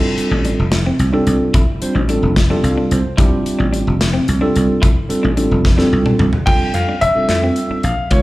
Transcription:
Already playing: G3 C4 D4 F4 A4
0.18 muted slap bass stroke, closed hi-hat
0.31 A1 D4
0.45 D4, closed hi-hat
0.59 F1
0.72 snare, closed hi-hat
0.86 C4
0.99 C2, closed hi-hat
1.12 G3 C4 D4 F4 A4
1.27 C2, closed hi-hat
1.54 F1 E4, kick, closed hi-hat
1.81 G3 C4 D4 F4 C5, muted slap bass stroke, closed hi-hat
1.95 A1 D4
2.09 G3 C4 D4 F4 A4, closed hi-hat
2.23 F1
2.36 kick, snare, closed hi-hat
2.50 G3 C4 D4 F4 A4
2.63 C2 F5, closed hi-hat
2.77 D4
2.91 C2 C5, closed hi-hat
3.05 muted slap bass stroke
3.17 F1 G3 C4 D4 E4 F4 G4, kick, closed hi-hat
3.46 muted slap bass stroke, closed hi-hat
3.59 A1 D4
3.73 D4, closed hi-hat
3.87 F1
4.01 snare, closed hi-hat
4.13 C4
4.28 C2, closed hi-hat
4.41 G3 C4 D4 F4 A4
4.55 C2, closed hi-hat
4.70 muted slap bass stroke
4.82 F1 E4, kick, closed hi-hat
5.09 G3 C4 D4 F4 A4, muted slap bass stroke, closed hi-hat
5.23 A1 D4
5.37 G3 C4 D4 F4 A4, closed hi-hat
5.51 F1
5.65 kick, snare
5.77 G3 C4 D4 F4 A4, snare
5.93 C2
6.06 D4, mid tom
6.19 C2, mid tom
6.33 muted slap bass stroke, floor tom
6.46 F1 G3 C4 D4 F4 A4 G5, kick, crash
6.74 F2 F5, closed hi-hat
6.89 D4
7.01 F1 D4 E5, closed hi-hat
7.15 G3 C4 D4 F4 A4, muted slap bass stroke
7.29 F2, snare, closed hi-hat
7.43 C4
7.56 closed hi-hat
7.70 D4, muted slap bass stroke
7.83 A#1 F5, closed hi-hat
8.11 C#2 G#3 B3 D#4 F4 A#4 C#5, kick, closed hi-hat

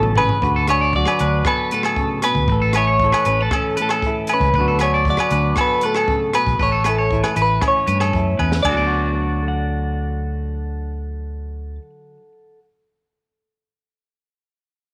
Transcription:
Already playing: A1 A2 B2 E3 C#4 A4
0.03 mid tom
0.15 C#3 B4, floor tom, low agogo
0.29 floor tom
0.42 D2 D3 F#4, muted clean electric guitar stroke, kick
0.56 A4
0.67 D4 B4 C#5, cross-stick, closed hi-hat, low agogo
0.81 D5
0.93 F#3 F#4 D5, kick
1.06 B4, cross-stick, low agogo
1.19 D2 D4 B4, closed hi-hat
1.45 B3 A4 B4, kick, cross-stick, low agogo
1.71 A2 A4 B4, closed hi-hat
1.83 A4, cross-stick, low agogo
1.96 C#3, kick
2.22 B2 B4, cross-stick, closed hi-hat, low agogo
2.35 D2, kick
2.47 A1, muted clean electric guitar stroke, kick
2.51 A2 A4
2.62 A4
2.73 B4 C#5, cross-stick, closed hi-hat, low agogo
2.77 E4
2.87 C#5
3.00 E3, kick
3.04 A4
3.12 B4, cross-stick, low agogo
3.25 A1 C#4 B4, closed hi-hat
3.40 E4 A4
3.51 A4, kick, cross-stick, low agogo
3.55 C#4
3.77 A2 B4, closed hi-hat
3.82 A4
3.89 A4, cross-stick, low agogo
4.02 kick
4.07 E4
4.27 B4, closed hi-hat, low agogo
4.34 C#4 B4
4.40 C#2, kick
4.53 D2 B4, kick
4.58 D3 F#3 B3 D4 F#4
4.68 A4
4.79 D4 B4 C#5, cross-stick, closed hi-hat, low agogo
4.94 D5
5.05 kick
5.09 F#3 F#4 D5
5.17 B4, cross-stick, low agogo
5.30 D2 B4, closed hi-hat
5.35 D4
5.56 A4, kick, cross-stick, low agogo
5.60 B3 B4
5.81 A2 B4, closed hi-hat
5.85 A4
5.95 A4, cross-stick, low agogo
6.08 C#3, kick
6.33 B2 B4, cross-stick, closed hi-hat, low agogo
6.47 B1, kick
6.59 A1 A2 A4 B4 C#5, kick
6.72 A4
6.84 E4 B4, cross-stick, closed hi-hat, low agogo
6.89 A4
6.98 C#5
7.11 E3 E4, kick
7.24 B4, cross-stick, low agogo
7.36 A1 E4 B4, closed hi-hat
7.42 B4
7.61 C#4, muted clean electric guitar stroke, kick, cross-stick, low agogo
7.68 C#5
7.87 G2 A2 B4, closed hi-hat
8.00 A4, cross-stick, low agogo
8.13 F#2 E4, kick
8.39 E2 C#4 B4, kick, low agogo
8.52 snare
8.63 D2 D4 D5, kick, crash, low agogo
8.67 D3 F#4
8.72 F#3 A4
8.76 B3 D5
8.82 D4
8.87 F#4
9.42 A4
9.48 F#5

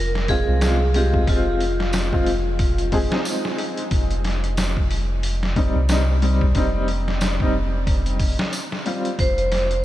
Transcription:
Already playing: F1 A#4
0.15 snare
0.28 G#3 C4 F4 G#4, kick, open hi-hat
0.48 C2
0.61 G#3 C4 F4, snare, open hi-hat, tambourine
0.94 G#3 C4 F4 G4, open hi-hat
1.14 kick
1.27 F1 G#3 C4 F4, kick, open hi-hat
1.61 open hi-hat
1.80 snare
1.93 snare, open hi-hat, tambourine
2.13 G#3 C4 F4, kick
2.26 open hi-hat
2.59 kick, open hi-hat
2.78 closed hi-hat
2.92 G#3 C4 G#4, kick, open hi-hat
3.11 G#3 C4 D#4, snare
3.25 open hi-hat, tambourine
3.45 snare
3.58 open hi-hat
3.77 closed hi-hat
3.91 F1, kick, open hi-hat
4.11 closed hi-hat
4.24 snare, open hi-hat
4.44 closed hi-hat
4.57 snare, open hi-hat, tambourine
4.77 kick
4.91 open hi-hat
5.23 open hi-hat
5.43 snare
5.56 G3 C4 D#4, kick, open hi-hat
5.76 C2
5.89 G3 C4 D#4, snare, open hi-hat, tambourine
6.22 G3 C4 D#4, open hi-hat
6.41 kick
6.55 F1 G3 C4 D#4, kick, open hi-hat
6.88 open hi-hat
7.08 snare
7.21 snare, open hi-hat, tambourine
7.40 G3 C4 D#4, kick
7.87 kick, open hi-hat
8.06 closed hi-hat
8.19 kick, open hi-hat
8.39 snare
8.53 open hi-hat, tambourine
8.72 snare
8.86 G3 C4 F4, open hi-hat
9.05 closed hi-hat
9.19 F1 C5, kick, open hi-hat
9.38 closed hi-hat
9.52 snare, open hi-hat
9.71 closed hi-hat

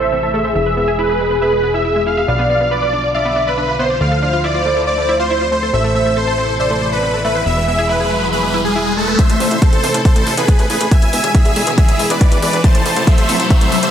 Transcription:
Already playing: A1 C3 E3 A3 E4 A4 C5
0.02 C5 E5
0.12 C4
0.23 A4
0.34 A3 G#4 E5
0.45 C5
0.55 E1 B2 G#3 G#4 E5
0.66 B4
0.77 B3 E5
0.88 G#4
0.99 E4 B4
1.09 G#4
1.20 G#3
1.31 B4
1.42 B4 E5
1.53 G#3
1.63 B3
1.74 E4 E5
1.85 E4
1.96 G#3
2.07 E4 F5
2.17 E5
2.28 B1 D3 F3 B3 D4 F4 D5 F5
2.39 B3
2.50 B3 F5
2.61 B3
2.71 B4 D5
2.82 B4
2.93 D4
3.04 D5
3.14 D5 E5 F5
3.25 B3
3.36 B3
3.47 B4 D5
3.58 D4
3.69 B4
3.79 B3 C5
3.90 D5
4.01 D2 A3 E4 D5 F5
4.12 A4
4.22 D4 F5
4.33 F4
4.44 E4 D5
4.55 F4
4.66 A3
4.76 A4
4.87 D5
4.98 A3
5.09 E4
5.19 F4 C5
5.30 E4
5.41 F4
5.52 A3 C5
5.63 A4
5.73 A1 C3 E3 A3 E4 A4 C5 E5, riser
5.84 A3
5.95 A3 E5
6.06 A3
6.17 A4 C5
6.27 A4
6.38 C4
6.49 C5
6.60 C5 D5 E5
6.71 A3
6.81 A3
6.92 B4 C5
7.03 C4
7.14 A4
7.25 A3 B4 E5
7.35 C5
7.46 E1 B2 G#3 G#4 E5
7.57 B4
7.68 B3 E5
7.79 G#4
7.89 E4 B4
8.00 G#4
8.11 G#3
8.22 B4
8.32 B4 E5
8.43 G#3
8.54 E4
8.65 G#4
8.76 E4
8.86 G#4
8.97 G#3 A4
9.08 B4
9.19 C3 E3 A3 E4 A4 C5 E5, kick, closed hi-hat, riser
9.30 A1 A3, closed hi-hat
9.40 A1 A3 C5 E5, open hi-hat
9.51 A1 A3, closed hi-hat
9.62 A4 C5, kick, closed hi-hat
9.73 A1 A4, closed hi-hat
9.83 E1 C4, open hi-hat
9.94 A1 C5, closed hi-hat
10.05 A4 C5 E5, kick, closed hi-hat
10.16 A1 A3, closed hi-hat
10.27 A1 A3, open hi-hat
10.37 A1 G#4 B4 C5, closed hi-hat
10.48 C4, kick, closed hi-hat
10.59 A1 A4, closed hi-hat
10.70 A1 A3 G#4 B4, open hi-hat
10.81 A1 C5, closed hi-hat
10.91 B2 G#3 E4 G#4 E5 G#5, kick, closed hi-hat
11.02 E1 B4, closed hi-hat
11.13 E1 B3 E5 G#5, open hi-hat
11.24 E1 G#4, closed hi-hat
11.35 E4 G#4 E5, kick, closed hi-hat
11.45 E1 G#4, closed hi-hat
11.56 D1 G#3, open hi-hat
11.67 E1 B4, closed hi-hat
11.78 G#4 E5, kick, closed hi-hat
11.89 E1 G#3, closed hi-hat
11.99 E1 E4, open hi-hat
12.10 E1 G#4 B4 D5, closed hi-hat
12.21 E4, kick, closed hi-hat
12.32 E1 G#4, closed hi-hat
12.42 E1 G#3 B4 D5, open hi-hat
12.53 E1 B4, closed hi-hat
12.64 C3 A3 A4 C5 A5, kick, closed hi-hat
12.75 A1 A3, closed hi-hat
12.86 A1 A3 C5 A5, open hi-hat
12.96 A1 A3, closed hi-hat
13.07 A4 C5 E5, kick, closed hi-hat
13.18 A1 A4, closed hi-hat
13.29 E1 C4, open hi-hat
13.40 A1 C5, closed hi-hat
13.50 C5 E5, kick, closed hi-hat
13.61 A1 A3, closed hi-hat
13.72 A1 A3, open hi-hat
13.83 A1 C5 E5, closed hi-hat

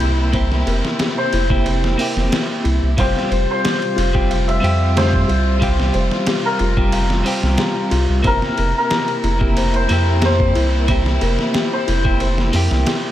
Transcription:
Already playing: C3 A#3 C4 E4 G4 A#4 C5
0.00 C2 E4, ride
0.33 A#3 C4 E4 G4 C5, kick, ride
0.52 snare
0.67 F1 A#4, ride
0.85 snare
0.99 G4, snare, ride
1.18 C5
1.33 F1 E4, ride
1.50 A#3 C4 E4 G4, kick
1.65 C5, ride
1.84 snare
1.98 A#3 C4 E4 G4 A#4, open hi-hat
2.17 F1, snare
2.31 G4, snare, ride
2.64 C2 E4, ride
2.83 C2
2.97 F1 C3 G3 C4 F4 G4 C5 F5, kick, ride
3.16 snare
3.30 F1 C5, ride
3.51 C5
3.64 G4, snare, ride
3.82 ride
3.96 F1 F4, ride
4.13 G3 C4 F4 G4, kick
4.30 F5, ride
4.48 E5, ride
4.60 F2 G3 C4 F4 G4 C5
4.64 ride
4.95 G4 C5, snare, ride
5.14 kick
5.28 C2 F4, ride
5.60 G3 C4 F4 G4 F5, kick, ride
5.80 snare
5.94 F1 C5, ride
6.11 snare
6.27 G4, snare, ride
6.46 A#4
6.59 F1 F4, ride
6.77 G3 C4 F4 G4, kick
6.92 F5, ride
7.10 snare
7.24 G3 C4 F4 G4 C5, open hi-hat
7.43 C2, snare
7.58 G4, snare, ride
7.91 C2 F4, ride
8.09 C2
8.23 F1 A#3 C4 E4 G4 C5, kick, ride
8.27 A#4
8.42 snare
8.58 F1 A#4, ride
8.78 A#4
8.90 G4, snare, ride
9.08 ride
9.24 F1 E4, ride
9.39 A#3 C4 E4 G4, kick
9.57 C5, ride
9.74 C5, ride
9.89 F2 A#3 C4 E4 G4 A#4, ride
10.22 G4 C5, snare, ride
10.40 kick
10.55 C2 E4, ride
10.88 A#3 C4 E4 G4 C5, kick, ride
11.06 snare
11.21 F1 A#4, ride
11.39 snare
11.54 G4, snare, ride
11.73 C5
11.87 F1 E4, ride
12.04 A#3 C4 E4 G4, kick
12.20 C5, ride
12.38 snare
12.53 F2 A#3 C4 E4 G4 A#4, open hi-hat
12.71 C2, snare
12.86 G4, snare, ride

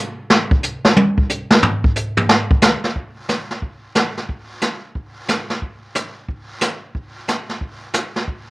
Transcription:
0.30 snare
0.51 kick
0.63 hi-hat pedal
0.85 snare
0.97 high tom
1.18 kick
1.30 hi-hat pedal
1.51 snare
1.63 floor tom
1.84 kick
1.96 hi-hat pedal
2.17 floor tom
2.29 snare
2.51 kick
2.62 snare, hi-hat pedal
2.84 snare
2.96 brush sweep, kick
3.29 snare, hi-hat pedal
3.51 snare
3.62 brush sweep, kick
3.95 snare, hi-hat pedal
4.17 snare
4.29 brush sweep, kick
4.62 snare, hi-hat pedal
4.95 brush sweep, kick
5.28 snare, hi-hat pedal
5.50 snare
5.62 brush sweep, kick
5.95 snare, hi-hat pedal
6.28 brush sweep, kick
6.61 snare, hi-hat pedal
6.94 brush sweep, kick
7.28 snare, hi-hat pedal
7.49 snare
7.61 brush sweep, kick
7.94 snare, hi-hat pedal
8.16 snare
8.27 brush sweep, kick

